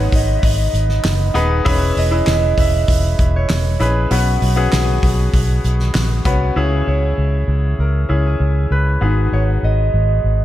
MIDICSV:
0, 0, Header, 1, 5, 480
1, 0, Start_track
1, 0, Tempo, 613497
1, 1300, Time_signature, 4, 2, 24, 8
1, 8175, End_track
2, 0, Start_track
2, 0, Title_t, "Harp"
2, 0, Program_c, 0, 46
2, 0, Note_on_c, 0, 71, 90
2, 0, Note_on_c, 0, 73, 87
2, 118, Note_on_c, 0, 75, 85
2, 288, Note_on_c, 0, 76, 64
2, 335, Note_off_c, 0, 75, 0
2, 347, Note_on_c, 0, 75, 91
2, 394, Note_off_c, 0, 76, 0
2, 998, Note_off_c, 0, 71, 0
2, 1254, Note_off_c, 0, 73, 0
2, 1548, Note_off_c, 0, 75, 0
2, 1551, Note_on_c, 0, 75, 103
2, 2033, Note_on_c, 0, 76, 105
2, 2080, Note_off_c, 0, 75, 0
2, 2630, Note_on_c, 0, 73, 95
2, 2982, Note_on_c, 0, 71, 88
2, 3381, Note_off_c, 0, 76, 0
2, 4125, Note_off_c, 0, 73, 0
2, 4627, Note_off_c, 0, 71, 0
2, 5381, Note_on_c, 0, 73, 86
2, 6102, Note_on_c, 0, 70, 76
2, 6466, Note_on_c, 0, 68, 77
2, 6820, Note_on_c, 0, 71, 82
2, 6867, Note_off_c, 0, 70, 0
2, 6877, Note_off_c, 0, 73, 0
2, 7301, Note_on_c, 0, 73, 91
2, 7365, Note_off_c, 0, 73, 0
2, 7543, Note_on_c, 0, 75, 85
2, 8175, Note_off_c, 0, 68, 0
2, 8175, Note_off_c, 0, 71, 0
2, 8175, Note_off_c, 0, 75, 0
2, 8175, End_track
3, 0, Start_track
3, 0, Title_t, "Upright piano"
3, 0, Program_c, 1, 0
3, 0, Control_c, 1, 64, 127
3, 0, Note_on_c, 1, 44, 75
3, 0, Note_on_c, 1, 59, 78
3, 0, Note_on_c, 1, 63, 66
3, 0, Note_on_c, 1, 68, 63
3, 0, Note_on_c, 1, 71, 81
3, 557, Note_off_c, 1, 59, 0
3, 558, Note_off_c, 1, 63, 0
3, 560, Note_off_c, 1, 68, 0
3, 562, Note_off_c, 1, 71, 0
3, 1049, Note_on_c, 1, 59, 91
3, 1052, Note_on_c, 1, 63, 88
3, 1056, Note_on_c, 1, 68, 90
3, 1058, Note_on_c, 1, 71, 98
3, 1259, Note_off_c, 1, 59, 0
3, 1261, Note_off_c, 1, 63, 0
3, 1262, Note_off_c, 1, 68, 0
3, 1263, Note_off_c, 1, 71, 0
3, 1288, Note_on_c, 1, 61, 101
3, 1291, Note_on_c, 1, 64, 94
3, 1293, Note_on_c, 1, 52, 83
3, 1294, Note_on_c, 1, 68, 87
3, 1297, Note_on_c, 1, 71, 110
3, 1309, Control_c, 1, 64, 0
3, 1314, Note_off_c, 1, 44, 0
3, 1442, Control_c, 1, 64, 127
3, 1601, Note_off_c, 1, 61, 0
3, 1602, Note_off_c, 1, 64, 0
3, 1604, Note_off_c, 1, 68, 0
3, 1605, Note_off_c, 1, 71, 0
3, 1649, Note_on_c, 1, 61, 66
3, 1652, Note_on_c, 1, 64, 70
3, 1654, Note_on_c, 1, 68, 73
3, 1659, Note_on_c, 1, 71, 82
3, 1984, Note_off_c, 1, 52, 0
3, 2472, Note_off_c, 1, 61, 0
3, 2474, Note_off_c, 1, 64, 0
3, 2475, Note_off_c, 1, 68, 0
3, 2477, Note_off_c, 1, 71, 0
3, 2969, Note_on_c, 1, 61, 71
3, 2971, Note_on_c, 1, 64, 66
3, 2976, Note_on_c, 1, 68, 75
3, 2979, Note_on_c, 1, 71, 86
3, 3178, Note_off_c, 1, 61, 0
3, 3179, Note_off_c, 1, 64, 0
3, 3182, Note_off_c, 1, 68, 0
3, 3183, Note_off_c, 1, 71, 0
3, 3214, Note_on_c, 1, 59, 80
3, 3216, Note_on_c, 1, 61, 67
3, 3218, Note_on_c, 1, 47, 69
3, 3218, Note_on_c, 1, 66, 77
3, 3223, Note_on_c, 1, 71, 90
3, 3228, Control_c, 1, 64, 0
3, 3350, Control_c, 1, 64, 127
3, 3523, Note_off_c, 1, 59, 0
3, 3524, Note_off_c, 1, 61, 0
3, 3525, Note_off_c, 1, 66, 0
3, 3527, Note_off_c, 1, 71, 0
3, 3569, Note_on_c, 1, 59, 89
3, 3572, Note_on_c, 1, 61, 76
3, 3575, Note_on_c, 1, 66, 80
3, 3578, Note_on_c, 1, 68, 93
3, 3906, Note_off_c, 1, 47, 0
3, 4391, Note_off_c, 1, 59, 0
3, 4393, Note_off_c, 1, 61, 0
3, 4394, Note_off_c, 1, 66, 0
3, 4396, Note_off_c, 1, 68, 0
3, 4892, Note_on_c, 1, 59, 80
3, 4894, Note_on_c, 1, 61, 82
3, 4898, Note_on_c, 1, 66, 86
3, 4899, Note_on_c, 1, 71, 92
3, 5099, Note_off_c, 1, 59, 0
3, 5100, Note_off_c, 1, 61, 0
3, 5102, Note_off_c, 1, 66, 0
3, 5102, Note_off_c, 1, 71, 0
3, 5130, Note_on_c, 1, 61, 79
3, 5134, Note_on_c, 1, 64, 75
3, 5135, Note_on_c, 1, 49, 71
3, 5140, Note_on_c, 1, 68, 92
3, 5146, Control_c, 1, 64, 0
3, 5302, Control_c, 1, 64, 127
3, 5824, Note_off_c, 1, 49, 0
3, 5952, Note_off_c, 1, 61, 0
3, 5954, Note_off_c, 1, 64, 0
3, 5957, Note_off_c, 1, 68, 0
3, 6327, Note_on_c, 1, 61, 69
3, 6331, Note_on_c, 1, 64, 59
3, 6335, Note_on_c, 1, 68, 71
3, 6946, Note_off_c, 1, 61, 0
3, 6948, Note_off_c, 1, 64, 0
3, 6950, Note_off_c, 1, 68, 0
3, 7049, Note_on_c, 1, 59, 72
3, 7053, Note_on_c, 1, 44, 59
3, 7054, Note_on_c, 1, 66, 64
3, 7057, Note_on_c, 1, 68, 75
3, 7064, Control_c, 1, 64, 0
3, 7221, Control_c, 1, 64, 127
3, 7744, Note_off_c, 1, 44, 0
3, 7872, Note_off_c, 1, 59, 0
3, 7874, Note_off_c, 1, 66, 0
3, 7876, Note_off_c, 1, 68, 0
3, 8175, End_track
4, 0, Start_track
4, 0, Title_t, "Fingered electric bass"
4, 0, Program_c, 2, 33
4, 96, Note_on_c, 2, 32, 90
4, 294, Note_off_c, 2, 32, 0
4, 336, Note_on_c, 2, 32, 92
4, 535, Note_off_c, 2, 32, 0
4, 574, Note_on_c, 2, 32, 97
4, 773, Note_off_c, 2, 32, 0
4, 816, Note_on_c, 2, 30, 93
4, 1014, Note_off_c, 2, 30, 0
4, 1054, Note_on_c, 2, 27, 91
4, 1253, Note_off_c, 2, 27, 0
4, 1300, Note_on_c, 2, 28, 113
4, 1496, Note_off_c, 2, 28, 0
4, 1539, Note_on_c, 2, 28, 98
4, 1736, Note_off_c, 2, 28, 0
4, 1776, Note_on_c, 2, 28, 98
4, 1974, Note_off_c, 2, 28, 0
4, 2014, Note_on_c, 2, 28, 102
4, 2213, Note_off_c, 2, 28, 0
4, 2256, Note_on_c, 2, 28, 96
4, 2454, Note_off_c, 2, 28, 0
4, 2496, Note_on_c, 2, 28, 99
4, 2694, Note_off_c, 2, 28, 0
4, 2738, Note_on_c, 2, 28, 87
4, 2934, Note_off_c, 2, 28, 0
4, 2977, Note_on_c, 2, 34, 95
4, 3174, Note_off_c, 2, 34, 0
4, 3216, Note_on_c, 2, 35, 119
4, 3413, Note_off_c, 2, 35, 0
4, 3458, Note_on_c, 2, 35, 99
4, 3655, Note_off_c, 2, 35, 0
4, 3697, Note_on_c, 2, 35, 102
4, 3894, Note_off_c, 2, 35, 0
4, 3935, Note_on_c, 2, 35, 98
4, 4132, Note_off_c, 2, 35, 0
4, 4174, Note_on_c, 2, 35, 96
4, 4372, Note_off_c, 2, 35, 0
4, 4416, Note_on_c, 2, 35, 91
4, 4613, Note_off_c, 2, 35, 0
4, 4654, Note_on_c, 2, 34, 83
4, 4851, Note_off_c, 2, 34, 0
4, 4892, Note_on_c, 2, 36, 88
4, 5090, Note_off_c, 2, 36, 0
4, 5134, Note_on_c, 2, 37, 91
4, 5332, Note_off_c, 2, 37, 0
4, 5378, Note_on_c, 2, 37, 87
4, 5574, Note_off_c, 2, 37, 0
4, 5616, Note_on_c, 2, 37, 88
4, 5812, Note_off_c, 2, 37, 0
4, 5851, Note_on_c, 2, 37, 85
4, 6050, Note_off_c, 2, 37, 0
4, 6093, Note_on_c, 2, 37, 84
4, 6291, Note_off_c, 2, 37, 0
4, 6334, Note_on_c, 2, 37, 77
4, 6531, Note_off_c, 2, 37, 0
4, 6573, Note_on_c, 2, 37, 91
4, 6771, Note_off_c, 2, 37, 0
4, 6812, Note_on_c, 2, 37, 83
4, 7010, Note_off_c, 2, 37, 0
4, 7054, Note_on_c, 2, 32, 104
4, 7252, Note_off_c, 2, 32, 0
4, 7294, Note_on_c, 2, 32, 81
4, 7491, Note_off_c, 2, 32, 0
4, 7533, Note_on_c, 2, 32, 85
4, 7731, Note_off_c, 2, 32, 0
4, 7775, Note_on_c, 2, 32, 96
4, 7972, Note_off_c, 2, 32, 0
4, 8013, Note_on_c, 2, 32, 81
4, 8175, Note_off_c, 2, 32, 0
4, 8175, End_track
5, 0, Start_track
5, 0, Title_t, "Drums"
5, 97, Note_on_c, 9, 36, 100
5, 99, Note_on_c, 9, 44, 69
5, 103, Note_on_c, 9, 46, 73
5, 175, Note_off_c, 9, 36, 0
5, 177, Note_off_c, 9, 44, 0
5, 181, Note_off_c, 9, 46, 0
5, 337, Note_on_c, 9, 36, 102
5, 338, Note_on_c, 9, 44, 66
5, 338, Note_on_c, 9, 46, 87
5, 415, Note_off_c, 9, 36, 0
5, 416, Note_off_c, 9, 44, 0
5, 416, Note_off_c, 9, 46, 0
5, 574, Note_on_c, 9, 46, 50
5, 576, Note_on_c, 9, 44, 58
5, 652, Note_off_c, 9, 46, 0
5, 655, Note_off_c, 9, 44, 0
5, 698, Note_on_c, 9, 38, 35
5, 776, Note_off_c, 9, 38, 0
5, 817, Note_on_c, 9, 39, 96
5, 818, Note_on_c, 9, 44, 60
5, 819, Note_on_c, 9, 46, 73
5, 820, Note_on_c, 9, 38, 114
5, 896, Note_off_c, 9, 39, 0
5, 896, Note_off_c, 9, 44, 0
5, 897, Note_off_c, 9, 46, 0
5, 898, Note_off_c, 9, 38, 0
5, 1057, Note_on_c, 9, 46, 63
5, 1060, Note_on_c, 9, 44, 64
5, 1136, Note_off_c, 9, 46, 0
5, 1138, Note_off_c, 9, 44, 0
5, 1299, Note_on_c, 9, 36, 127
5, 1300, Note_on_c, 9, 44, 71
5, 1300, Note_on_c, 9, 46, 96
5, 1378, Note_off_c, 9, 36, 0
5, 1378, Note_off_c, 9, 44, 0
5, 1379, Note_off_c, 9, 46, 0
5, 1539, Note_on_c, 9, 44, 63
5, 1542, Note_on_c, 9, 46, 61
5, 1617, Note_off_c, 9, 44, 0
5, 1620, Note_off_c, 9, 46, 0
5, 1776, Note_on_c, 9, 39, 78
5, 1777, Note_on_c, 9, 44, 62
5, 1778, Note_on_c, 9, 38, 91
5, 1778, Note_on_c, 9, 46, 80
5, 1854, Note_off_c, 9, 39, 0
5, 1855, Note_off_c, 9, 44, 0
5, 1856, Note_off_c, 9, 38, 0
5, 1857, Note_off_c, 9, 46, 0
5, 2016, Note_on_c, 9, 36, 94
5, 2016, Note_on_c, 9, 44, 67
5, 2020, Note_on_c, 9, 46, 73
5, 2094, Note_off_c, 9, 36, 0
5, 2094, Note_off_c, 9, 44, 0
5, 2098, Note_off_c, 9, 46, 0
5, 2254, Note_on_c, 9, 44, 64
5, 2254, Note_on_c, 9, 46, 89
5, 2256, Note_on_c, 9, 36, 93
5, 2332, Note_off_c, 9, 44, 0
5, 2332, Note_off_c, 9, 46, 0
5, 2334, Note_off_c, 9, 36, 0
5, 2493, Note_on_c, 9, 46, 53
5, 2495, Note_on_c, 9, 44, 56
5, 2496, Note_on_c, 9, 36, 86
5, 2571, Note_off_c, 9, 46, 0
5, 2574, Note_off_c, 9, 36, 0
5, 2574, Note_off_c, 9, 44, 0
5, 2735, Note_on_c, 9, 39, 88
5, 2736, Note_on_c, 9, 44, 59
5, 2736, Note_on_c, 9, 46, 77
5, 2737, Note_on_c, 9, 38, 114
5, 2813, Note_off_c, 9, 39, 0
5, 2814, Note_off_c, 9, 44, 0
5, 2815, Note_off_c, 9, 38, 0
5, 2815, Note_off_c, 9, 46, 0
5, 2975, Note_on_c, 9, 46, 61
5, 2978, Note_on_c, 9, 44, 62
5, 3054, Note_off_c, 9, 46, 0
5, 3056, Note_off_c, 9, 44, 0
5, 3215, Note_on_c, 9, 44, 65
5, 3215, Note_on_c, 9, 46, 100
5, 3293, Note_off_c, 9, 44, 0
5, 3293, Note_off_c, 9, 46, 0
5, 3457, Note_on_c, 9, 44, 65
5, 3459, Note_on_c, 9, 46, 67
5, 3535, Note_off_c, 9, 44, 0
5, 3538, Note_off_c, 9, 46, 0
5, 3697, Note_on_c, 9, 39, 78
5, 3698, Note_on_c, 9, 44, 64
5, 3699, Note_on_c, 9, 38, 98
5, 3700, Note_on_c, 9, 46, 77
5, 3775, Note_off_c, 9, 39, 0
5, 3777, Note_off_c, 9, 44, 0
5, 3778, Note_off_c, 9, 38, 0
5, 3778, Note_off_c, 9, 46, 0
5, 3935, Note_on_c, 9, 36, 93
5, 3940, Note_on_c, 9, 44, 64
5, 3945, Note_on_c, 9, 46, 80
5, 4014, Note_off_c, 9, 36, 0
5, 4019, Note_off_c, 9, 44, 0
5, 4023, Note_off_c, 9, 46, 0
5, 4174, Note_on_c, 9, 36, 89
5, 4174, Note_on_c, 9, 44, 64
5, 4175, Note_on_c, 9, 46, 79
5, 4252, Note_off_c, 9, 44, 0
5, 4253, Note_off_c, 9, 36, 0
5, 4253, Note_off_c, 9, 46, 0
5, 4414, Note_on_c, 9, 46, 47
5, 4417, Note_on_c, 9, 44, 61
5, 4492, Note_off_c, 9, 46, 0
5, 4495, Note_off_c, 9, 44, 0
5, 4534, Note_on_c, 9, 38, 36
5, 4612, Note_off_c, 9, 38, 0
5, 4653, Note_on_c, 9, 39, 86
5, 4654, Note_on_c, 9, 44, 67
5, 4654, Note_on_c, 9, 46, 82
5, 4655, Note_on_c, 9, 38, 110
5, 4731, Note_off_c, 9, 39, 0
5, 4732, Note_off_c, 9, 44, 0
5, 4733, Note_off_c, 9, 38, 0
5, 4733, Note_off_c, 9, 46, 0
5, 4892, Note_on_c, 9, 46, 67
5, 4893, Note_on_c, 9, 36, 96
5, 4894, Note_on_c, 9, 44, 61
5, 4970, Note_off_c, 9, 46, 0
5, 4971, Note_off_c, 9, 36, 0
5, 4972, Note_off_c, 9, 44, 0
5, 8175, End_track
0, 0, End_of_file